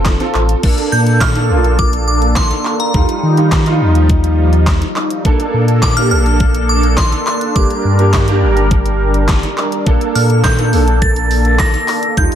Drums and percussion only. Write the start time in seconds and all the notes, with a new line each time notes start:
0.05 kick, snare, clap, closed hi-hat
0.20 closed hi-hat
0.34 clap
0.49 closed hi-hat
0.63 kick, closed hi-hat, crash
0.78 closed hi-hat
1.07 closed hi-hat
1.21 kick, snare, clap, closed hi-hat
1.35 closed hi-hat
1.64 closed hi-hat
1.79 kick, closed hi-hat
1.93 closed hi-hat
2.22 closed hi-hat
2.36 kick, snare, clap, closed hi-hat
2.51 closed hi-hat
2.65 clap
2.80 closed hi-hat
2.94 kick, closed hi-hat
3.09 closed hi-hat
3.37 closed hi-hat
3.52 kick, snare, clap, closed hi-hat
3.66 closed hi-hat
3.95 closed hi-hat
4.09 kick, closed hi-hat
4.24 closed hi-hat
4.53 closed hi-hat
4.67 kick, snare, clap, closed hi-hat
4.82 closed hi-hat
4.96 clap
5.10 closed hi-hat
5.25 kick, closed hi-hat
5.40 closed hi-hat
5.68 closed hi-hat
5.82 kick, snare, clap, closed hi-hat
5.97 closed hi-hat
6.26 closed hi-hat
6.40 kick, closed hi-hat
6.55 closed hi-hat
6.83 closed hi-hat
6.97 kick, snare, clap, closed hi-hat
7.12 closed hi-hat
7.27 clap
7.41 closed hi-hat
7.56 kick, closed hi-hat
7.70 closed hi-hat
7.99 closed hi-hat
8.13 kick, snare, clap, closed hi-hat
8.28 closed hi-hat
8.57 closed hi-hat
8.71 kick, closed hi-hat
8.86 closed hi-hat
9.14 closed hi-hat
9.28 kick, snare, clap, closed hi-hat
9.43 closed hi-hat
9.58 clap
9.72 closed hi-hat
9.87 kick, closed hi-hat
10.01 closed hi-hat
10.15 open hi-hat
10.30 closed hi-hat
10.44 kick, snare, clap, closed hi-hat
10.59 closed hi-hat
10.73 open hi-hat
10.88 closed hi-hat
11.02 kick, closed hi-hat
11.16 closed hi-hat
11.31 open hi-hat
11.45 closed hi-hat
11.59 kick, snare, clap, closed hi-hat
11.74 closed hi-hat
11.88 clap, open hi-hat
12.03 closed hi-hat
12.17 kick, closed hi-hat
12.32 closed hi-hat